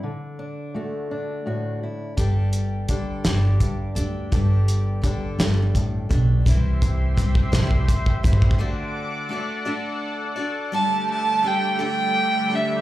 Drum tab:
HH |------------------------|x---x---x---x---x---x---|x---x---x---x---x---x---|x---x---x---x---x---x---|
SD |------------------------|------------o-----------|------------o-----------|------------o-----------|
BD |------------------------|o-------o-------o-------|o-------o-------o---o---|o---o---o-o-o-o-o-o-oooo|

HH |------------------------|------------------------|
SD |------------------------|------------------------|
BD |------------------------|------------------------|